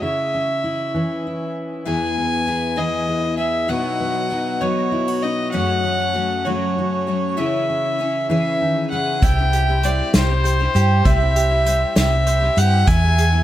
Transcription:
0.02 steel-string acoustic guitar C#3 E4, fiddle E5
0.34 steel-string acoustic guitar C#4
0.64 steel-string acoustic guitar E4
0.94 steel-string acoustic guitar E3 C#4
1.27 steel-string acoustic guitar E4
1.85 steel-string acoustic guitar E2, twelve-string acoustic guitar E3 B3 E4 G#4, fiddle G#5
2.18 steel-string acoustic guitar B3
2.46 twelve-string acoustic guitar E3 B3 E4 G#4
2.76 twelve-string acoustic guitar E3 B3 E4 G#4, fiddle D#5
3.09 steel-string acoustic guitar G#4
3.37 twelve-string acoustic guitar B3 E4 G#4, fiddle E5
3.68 twelve-string acoustic guitar B2 F#3 B3 D#4 F#4, fiddle F#5
4.01 steel-string acoustic guitar B3
4.30 twelve-string acoustic guitar F#3 B3 D#4 F#4
4.61 twelve-string acoustic guitar B2 F#3 B3 D#4 F#4, fiddle C#5
4.92 steel-string acoustic guitar E4
5.08 steel-string acoustic guitar F#4
5.22 twelve-string acoustic guitar B3 D#4 F#4, fiddle D#5
5.51 twelve-string acoustic guitar F#2 C#3 F#3 A3 C#4 F#4, fiddle F#5
5.85 steel-string acoustic guitar A3
6.13 twelve-string acoustic guitar F#3 A3 C#4 F#4
6.44 twelve-string acoustic guitar F#2 C#3 F#3 A3 C#4 F#4, fiddle C#5
6.78 steel-string acoustic guitar F#4
7.07 twelve-string acoustic guitar F#3 A3 C#4 F#4
7.37 twelve-string acoustic guitar C#3 E3 C#4 E4 G#4, fiddle E5
7.70 steel-string acoustic guitar C#4
7.99 twelve-string acoustic guitar E3 C#4 E4 G#4
8.30 twelve-string acoustic guitar C#3 E3 C#4 G#4, fiddle E5
8.61 steel-string acoustic guitar D#3
8.90 steel-string acoustic guitar C#3, twelve-string acoustic guitar C#4 E4 G#4, fiddle F#5
9.22 fingered electric bass C2, twelve-string acoustic guitar C3 G3 C4 E4 G4, mandolin E4, fiddle G5, kick, closed hi-hat
9.38 twelve-string acoustic guitar C4 E4 G4
9.53 mandolin G4, closed hi-hat
9.68 twelve-string acoustic guitar C4 E4 G4
9.83 twelve-string acoustic guitar G3 C4 E4 G4, mandolin C5, fiddle D5, closed hi-hat
10.13 fingered electric bass C2, twelve-string acoustic guitar C3 G3 C4 E4 G4, fiddle C5, snare, closed hi-hat
10.29 twelve-string acoustic guitar C4 E4 G4
10.44 mandolin C5, closed hi-hat
10.59 twelve-string acoustic guitar C4 E4 G4
10.74 fingered electric bass G2, twelve-string acoustic guitar G3 C4 E4 G4, mandolin G4, closed hi-hat
11.05 fingered electric bass C2, twelve-string acoustic guitar C3 G3 C4 E4 G4, mandolin E4, fiddle E5, kick, closed hi-hat
11.20 twelve-string acoustic guitar C4 E4 G4
11.36 mandolin G4, closed hi-hat
11.50 twelve-string acoustic guitar C4 E4 G4
11.64 twelve-string acoustic guitar G3 C4 E4 G4, mandolin C5, closed hi-hat
11.95 fingered electric bass C2, twelve-string acoustic guitar C3 G3 C4 E4 G4, fiddle E5, snare, closed hi-hat
12.10 twelve-string acoustic guitar C4 E4 G4
12.27 mandolin C5, closed hi-hat
12.40 twelve-string acoustic guitar C4 E4 G4
12.55 fingered electric bass G2, twelve-string acoustic guitar G3 C4 E4 G4, mandolin G4, fiddle F#5, closed hi-hat
12.86 fingered electric bass E2, twelve-string acoustic guitar E3 B3 E4 G#4, mandolin E4, fiddle G#5, kick, closed hi-hat
13.01 twelve-string acoustic guitar B3 E4 G#4
13.18 mandolin G#4, closed hi-hat
13.32 twelve-string acoustic guitar B3 E4 G#4

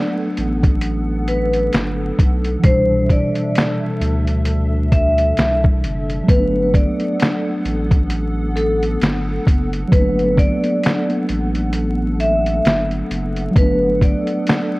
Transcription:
Already playing: tine electric piano F#3 A3 B3 D4, analog synth pad B3 A4 F#5, vibraphone D5
0.37 sub bass A1, closed hi-hat
0.63 kick, closed hi-hat
0.81 analog synth pad A4, closed hi-hat
1.28 vibraphone B4, closed hi-hat
1.54 closed hi-hat
1.73 sub bass G1, finger snap, snare, closed hi-hat
2.19 sub bass B1, kick, closed hi-hat
2.45 closed hi-hat
2.59 tine electric piano E3 G3
2.64 sub bass C2, tine electric piano B2, analog synth pad D4 E5, vibraphone C5, kick, closed hi-hat
2.70 tine electric piano D4
3.09 vibraphone D5, kick, closed hi-hat
3.35 closed hi-hat
3.55 finger snap, snare, closed hi-hat
4.01 sub bass D2, closed hi-hat
4.27 closed hi-hat
4.45 closed hi-hat
4.92 vibraphone E5, kick, closed hi-hat
5.18 closed hi-hat
5.37 sub bass C2, finger snap, snare, closed hi-hat
5.64 kick
5.83 sub bass F#1, closed hi-hat
6.10 closed hi-hat
6.23 tine electric piano F#3 A3
6.28 sub bass G1, analog synth pad B3 A4 F#5, tine electric piano B3, vibraphone B4, kick, closed hi-hat
6.34 tine electric piano C4
6.40 tine electric piano D4
6.74 vibraphone D5, kick, closed hi-hat
7.00 closed hi-hat
7.20 finger snap, snare, closed hi-hat
7.65 sub bass A1, closed hi-hat
7.91 kick, closed hi-hat
8.10 closed hi-hat
8.56 vibraphone A4, closed hi-hat
8.83 closed hi-hat
9.01 sub bass G1, finger snap, snare, closed hi-hat
9.47 sub bass F#1, kick, closed hi-hat
9.73 closed hi-hat
9.88 sub bass G1, tine electric piano F#3 A3, kick
9.92 tine electric piano A#3, vibraphone B4, closed hi-hat
9.99 tine electric piano B3 D4
10.19 closed hi-hat
10.38 vibraphone D5, kick, closed hi-hat
10.64 closed hi-hat
10.84 finger snap, snare, closed hi-hat
11.10 closed hi-hat
11.29 sub bass A1, closed hi-hat
11.55 closed hi-hat
11.73 closed hi-hat
12.20 vibraphone E5, closed hi-hat
12.46 closed hi-hat
12.65 sub bass G1, finger snap, snare, closed hi-hat
12.91 closed hi-hat
13.11 sub bass F#1, closed hi-hat
13.36 closed hi-hat
13.51 tine electric piano F#3 A3
13.56 sub bass G1, analog synth pad B3 A4 F#5, tine electric piano B3, vibraphone B4, kick, closed hi-hat
13.61 tine electric piano D4
14.01 vibraphone D5, kick, closed hi-hat
14.27 closed hi-hat
14.46 finger snap, snare, closed hi-hat

